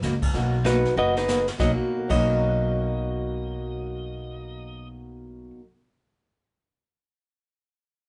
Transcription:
0.02 C#2 B2 F#3 A#3 D#4 F#4, snare, hi-hat pedal
0.22 kick, crash
0.33 B1 B2 F#3 A#3 B3 D#4 F#4, brush sweep, kick, snare
0.64 B2 F#3 A#3 D#4 F#4 B4, kick, snare, hi-hat pedal
0.85 snare
0.96 F#1 B2 F#3 A#3 D#4 F#4 B4 D#5
1.17 D#4 G#4 B4, snare
1.28 B2 F#3 A#3 D#4 F#4, snare, hi-hat pedal
1.48 snare
1.58 B1 B2 F#3 A#3 C#4 D#4 F#4 D#5, kick, snare
1.92 F#4
1.99 A#4
2.07 B1 B2 F#3 A#3 C#5 D#5, kick, crash
2.11 C#4 D#4 F#4
2.16 F#5
2.37 C#6
2.49 F#6

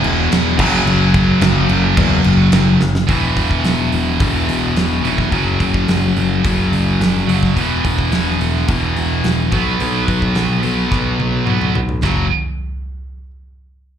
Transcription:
Already playing: E2 B2 E3
0.04 E1, crash
0.31 E1, snare, crash
0.58 F#1 F#2 C#3, kick, crash
0.62 F#3
0.86 F#1, crash
1.14 kick, crash
1.41 F#1 F#2 C#3 F#3, snare, crash
1.69 F#1, crash
1.97 E2, kick, crash
2.24 F#1, crash
2.52 F#1, snare, crash
2.81 F#1, snare
2.95 snare
3.08 E1 E2 B2 E3, kick, open hi-hat
3.37 E1, kick, open hi-hat
3.51 kick
3.64 E1, snare, open hi-hat
3.92 E1, open hi-hat
4.19 E1 E2 B2 E3, kick, open hi-hat
4.48 E1, open hi-hat
4.76 E1, snare, open hi-hat
5.03 F1 E2 B2 E3, open hi-hat
5.18 kick, snare
5.30 F#1 F#2 C#3, kick, open hi-hat
5.35 F#3
5.60 F#1, kick, open hi-hat
5.74 kick
5.88 F#1, snare, open hi-hat
6.17 F#1, open hi-hat
6.43 F#1 F#2 C#3 F#3, kick, open hi-hat
6.72 F#1, open hi-hat
7.00 F#1, snare, open hi-hat
7.27 F#1 F#2 C#3 F#3, open hi-hat
7.43 kick, snare
7.55 E1 E2 B2, kick, open hi-hat
7.59 E3
7.85 E1, kick, open hi-hat
7.99 kick
8.12 E1, snare, open hi-hat
8.40 E1, open hi-hat
8.68 E1 E2 B2 E3, kick, open hi-hat
8.96 E1, open hi-hat
9.24 E1, snare, open hi-hat
9.52 B1 B2 F#3 B3, kick, open hi-hat
9.80 B1, open hi-hat
10.08 B1, kick, open hi-hat
10.22 kick
10.35 B1, snare, open hi-hat
10.63 B1 B2 F#3 B3, open hi-hat
10.92 B1, kick, snare
11.19 B1, high tom
11.46 B1 B2 F#3 B3, mid tom
11.61 mid tom
11.75 B1, floor tom
11.89 floor tom
12.03 F#1 F#2 C#3 F#3, kick, snare, crash

